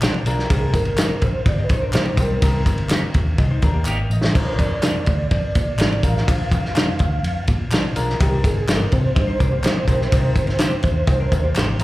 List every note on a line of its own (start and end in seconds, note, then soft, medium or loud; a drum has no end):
0.02 0.20 A#1 loud
0.02 0.13 G#3 loud
0.02 0.13 D4 medium
0.02 0.13 F4 loud
0.02 0.13 A#4 loud
0.02 snare loud
0.02 clap medium
0.02 ride medium
0.02 tambourine medium
0.14 ride soft
0.26 0.44 B1 loud
0.26 0.44 A#3 loud
0.26 0.44 D4 medium
0.26 0.44 F4 medium
0.26 0.44 G#4 medium
0.26 0.45 A#4 loud
0.26 ride medium
0.26 tambourine medium
0.39 snare soft
0.50 0.68 C2 loud
0.50 1.22 A#3 medium
0.50 1.22 C4 medium
0.50 1.22 D#4 medium
0.50 1.22 G4 medium
0.50 0.75 G#4 loud
0.50 1.22 A#4 medium
0.50 kick loud
0.50 ride loud
0.50 tambourine medium
0.74 1.09 G1 medium
0.74 1.25 A#4 loud
0.74 kick loud
0.74 ride medium
0.74 tambourine medium
0.85 ride soft
0.98 1.09 A#3 medium
0.98 1.09 D#4 medium
0.98 1.09 G4 medium
0.98 1.09 A#4 medium
0.98 snare loud
0.98 clap medium
0.98 ride medium
0.98 tambourine medium
1.21 1.40 A#1 medium
1.21 1.46 C5 medium
1.21 kick medium
1.21 ride medium
1.21 tambourine soft
1.46 1.64 G1 loud
1.46 1.65 D5 loud
1.46 kick loud
1.46 ride medium
1.46 tambourine soft
1.59 1.70 G4 medium
1.59 1.70 D#5 medium
1.64 1.71 B4 medium
1.69 1.87 A#1 medium
1.69 1.82 D#4 medium
1.69 1.83 C5 medium
1.69 2.21 C5 loud
1.69 kick loud
1.69 ride medium
1.69 tambourine medium
1.82 1.94 D4 medium
1.82 1.93 A#4 medium
1.93 2.12 A#1 medium
1.93 2.04 A#3 medium
1.93 2.06 A#3 medium
1.93 2.04 D#4 medium
1.93 2.06 G4 medium
1.93 2.05 G4 medium
1.93 2.05 A#4 loud
1.93 snare loud
1.93 clap medium
1.93 ride medium
1.93 tambourine medium
2.05 2.76 G3 medium
2.05 2.75 D#4 medium
2.05 ride soft
2.17 2.35 B1 medium
2.17 2.37 A#3 medium
2.17 2.37 C4 medium
2.17 2.37 D#4 medium
2.17 2.37 G4 medium
2.17 2.65 A#4 medium
2.17 2.37 C5 medium
2.17 kick loud
2.17 ride medium
2.17 tambourine medium
2.42 2.60 C2 loud
2.42 3.14 A#3 medium
2.42 3.14 C4 medium
2.42 3.14 D#4 medium
2.42 3.15 G4 medium
2.42 3.14 A#4 medium
2.42 kick loud
2.42 ride loud
2.42 tambourine medium
2.66 3.01 G1 medium
2.66 kick loud
2.66 ride medium
2.66 tambourine medium
2.78 ride soft
2.89 3.01 A#3 medium
2.89 3.01 D#4 medium
2.89 3.01 G4 medium
2.89 3.02 A#4 medium
2.89 snare loud
2.89 clap loud
2.89 ride medium
2.89 tambourine medium
3.14 3.32 D#2 medium
3.14 kick medium
3.14 ride medium
3.14 tambourine soft
3.38 3.56 C2 medium
3.38 3.51 G4 medium
3.38 3.50 D#5 medium
3.38 kick loud
3.38 ride medium
3.38 tambourine soft
3.51 3.63 D#4 medium
3.51 3.62 C5 medium
3.62 3.81 D#2 medium
3.62 3.75 D4 medium
3.62 3.73 A#4 medium
3.62 3.86 A#5 medium
3.62 kick loud
3.62 ride medium
3.62 tambourine medium
3.74 4.32 A#3 medium
3.74 4.32 G4 medium
3.85 4.04 G#1 loud
3.85 3.97 A#3 medium
3.85 3.97 D#4 medium
3.85 3.97 G4 medium
3.85 3.98 A#4 medium
3.85 4.11 D#5 medium
3.85 4.11 G5 medium
3.85 clap medium
3.85 tambourine medium
4.10 4.28 A1 loud
4.10 4.58 D#5 medium
4.10 tambourine medium
4.24 snare medium
4.35 4.53 A#1 loud
4.35 5.07 A#3 medium
4.35 4.41 C4 medium
4.35 5.07 F4 medium
4.35 5.07 G#4 medium
4.35 5.07 A#4 medium
4.35 4.58 C5 medium
4.35 kick loud
4.35 tambourine medium
4.35 crash medium
4.41 5.10 D4 medium
4.58 4.94 F2 medium
4.58 5.27 D5 loud
4.58 kick medium
4.58 ride medium
4.58 tambourine soft
4.82 4.94 G#3 medium
4.82 4.94 D4 medium
4.82 4.94 F4 medium
4.82 4.94 A#4 medium
4.82 snare loud
4.82 clap medium
4.82 ride medium
4.82 tambourine medium
5.06 5.25 D2 medium
5.06 kick medium
5.06 ride medium
5.06 tambourine soft
5.31 5.49 F2 loud
5.31 6.06 D5 loud
5.31 kick loud
5.31 ride medium
5.55 5.73 A#2 medium
5.55 kick loud
5.55 ride medium
5.55 tambourine medium
5.78 5.96 G#1 medium
5.78 5.89 G#3 medium
5.78 5.90 D4 medium
5.78 5.90 F4 medium
5.78 5.90 A#4 loud
5.78 snare loud
5.78 clap medium
5.78 ride medium
5.78 tambourine medium
5.92 ride soft
6.03 6.21 A1 loud
6.03 6.21 A#3 medium
6.03 6.21 D4 medium
6.03 6.21 F4 medium
6.03 6.21 G#4 medium
6.03 6.21 A#4 medium
6.03 7.44 F5 medium
6.03 kick loud
6.03 ride medium
6.03 tambourine medium
6.17 snare soft
6.27 6.45 A#1 loud
6.27 6.99 A#3 medium
6.27 6.99 D4 medium
6.27 6.99 F4 medium
6.27 6.99 G#4 medium
6.27 6.99 C5 medium
6.27 kick loud
6.27 ride loud
6.27 tambourine medium
6.52 6.86 F2 medium
6.52 kick loud
6.52 ride medium
6.52 tambourine soft
6.65 snare soft
6.75 6.86 G#3 medium
6.75 6.86 D4 medium
6.75 6.86 F4 loud
6.75 6.86 A#4 loud
6.75 snare loud
6.75 clap medium
6.75 ride medium
6.75 tambourine medium
6.99 7.17 D2 loud
6.99 kick medium
6.99 ride medium
6.99 tambourine soft
7.23 7.41 F2 loud
7.23 ride medium
7.47 7.66 A#2 loud
7.47 kick loud
7.47 ride medium
7.47 tambourine medium
7.71 7.89 A#1 loud
7.71 7.82 G#3 medium
7.71 7.82 D4 medium
7.71 7.83 F4 loud
7.71 7.83 A#4 loud
7.71 snare loud
7.71 clap medium
7.71 ride medium
7.71 tambourine medium
7.95 8.13 B1 loud
7.95 8.14 A#3 medium
7.95 8.14 D4 medium
7.95 8.14 F4 medium
7.95 8.14 G#4 medium
7.95 8.14 A#4 loud
7.95 ride medium
7.95 tambourine medium
8.10 snare soft
8.19 8.38 C2 loud
8.19 8.91 A#3 medium
8.19 8.91 C4 medium
8.19 8.91 D#4 medium
8.19 8.44 G4 loud
8.19 8.91 A#4 medium
8.19 8.91 G5 medium
8.19 kick loud
8.19 ride loud
8.19 tambourine medium
8.44 8.61 G1 medium
8.44 8.79 G#4 loud
8.44 kick loud
8.44 ride medium
8.44 tambourine medium
8.68 8.85 G1 loud
8.68 8.79 A#3 medium
8.68 8.79 D#4 medium
8.68 8.79 G4 loud
8.68 8.79 C5 medium
8.68 snare loud
8.68 clap medium
8.68 ride medium
8.68 tambourine medium
8.77 8.80 A4 medium
8.81 8.93 A#4 loud
8.92 9.10 C3 loud
8.92 11.53 C5 loud
8.92 kick medium
8.92 ride medium
8.92 tambourine soft
9.15 9.34 G2 loud
9.15 9.27 G4 medium
9.15 9.27 D#5 medium
9.15 kick loud
9.15 ride medium
9.27 9.39 D#4 medium
9.27 9.39 C5 medium
9.39 9.58 C2 medium
9.39 9.51 D4 medium
9.39 9.51 A#4 medium
9.39 kick loud
9.39 ride medium
9.39 tambourine medium
9.52 10.09 A#3 medium
9.52 10.09 G4 medium
9.63 9.81 A#1 loud
9.63 9.74 A#3 medium
9.63 9.75 D#4 loud
9.63 9.75 G4 medium
9.63 9.75 C5 medium
9.63 snare loud
9.63 clap medium
9.63 ride medium
9.63 tambourine medium
9.87 10.05 B1 medium
9.87 10.06 A#3 loud
9.87 10.06 C4 medium
9.87 10.06 D#4 medium
9.87 10.06 G4 medium
9.87 10.06 C5 loud
9.87 kick medium
9.87 ride medium
9.87 tambourine medium
10.01 snare soft
10.12 10.30 C2 loud
10.12 10.84 A#3 medium
10.12 10.83 C4 medium
10.12 10.18 D4 medium
10.12 10.83 G4 medium
10.12 10.83 C5 loud
10.12 kick loud
10.12 ride loud
10.12 tambourine medium
10.18 10.86 D#4 medium
10.36 10.71 G1 medium
10.36 kick loud
10.36 ride medium
10.36 tambourine medium
10.47 snare soft
10.47 ride soft
10.58 10.70 A#3 medium
10.58 10.70 D#4 medium
10.58 10.70 G4 medium
10.58 10.71 C5 medium
10.58 snare loud
10.58 clap medium
10.58 ride medium
10.58 tambourine medium
10.83 11.01 D#2 medium
10.83 kick medium
10.83 ride medium
10.83 tambourine soft
11.07 11.25 C2 medium
11.07 11.19 D#4 medium
11.07 11.19 C5 medium
11.07 kick loud
11.07 ride medium
11.07 tambourine soft
11.20 11.43 D4 medium
11.20 11.43 A#4 medium
11.32 11.49 D#2 medium
11.32 kick medium
11.32 ride medium
11.32 tambourine medium
11.44 11.84 A#3 medium
11.44 11.84 G4 medium
11.55 11.73 G#1 loud
11.55 11.66 A#3 medium
11.55 11.66 D#4 medium
11.55 11.67 G4 medium
11.55 11.67 C5 medium
11.55 snare loud
11.55 clap medium
11.55 ride medium
11.55 tambourine medium
11.79 11.84 A1 loud
11.79 11.84 A#3 loud
11.79 11.84 C4 medium
11.79 11.84 D#4 medium
11.79 11.84 A#4 loud
11.79 ride medium
11.79 tambourine medium